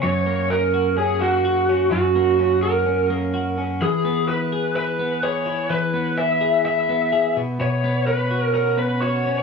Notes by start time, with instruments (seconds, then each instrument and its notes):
Already playing: clean electric guitar C#4
0.03 clean electric guitar F#2, lead electric guitar C#5
0.27 clean electric guitar A#3
0.50 clean electric guitar C#4, lead electric guitar A#4
0.74 clean electric guitar F#4
0.97 clean electric guitar C#4, lead electric guitar G#4
1.20 clean electric guitar A#3, lead electric guitar F#4
1.45 clean electric guitar F#4
1.69 clean electric guitar C#4
1.92 clean electric guitar F#2, lead electric guitar F#4
2.16 clean electric guitar A#3
2.39 clean electric guitar C#4
2.63 clean electric guitar F#4, lead electric guitar A#4
2.86 clean electric guitar C#4
3.10 clean electric guitar A#3
3.34 clean electric guitar F#4
3.58 clean electric guitar C#4
3.81 clean electric guitar E3, lead electric guitar G#4
4.05 clean electric guitar B3
4.29 clean electric guitar E4, lead electric guitar B4
4.52 clean electric guitar G#4
4.76 clean electric guitar E4, lead electric guitar B4
4.99 clean electric guitar B3
5.23 clean electric guitar G#4, lead electric guitar C#5
5.46 clean electric guitar E4
5.70 clean electric guitar E3, lead electric guitar B4
5.94 clean electric guitar B3
6.17 clean electric guitar E4, lead electric guitar E5
6.41 clean electric guitar G#4
6.65 clean electric guitar E4, lead electric guitar E5
6.89 clean electric guitar B3
7.12 clean electric guitar G#4
7.36 clean electric guitar B2
7.60 clean electric guitar B2, lead electric guitar C#5
7.84 clean electric guitar B3
8.07 clean electric guitar C#4, lead electric guitar B4
8.31 clean electric guitar F#4
8.43 lead electric guitar A#4
8.54 clean electric guitar C#4, lead electric guitar A#4
8.77 clean electric guitar B3, lead electric guitar B4
9.01 clean electric guitar F#4, lead electric guitar C#5
9.25 clean electric guitar C#4
9.38 lead electric guitar C#5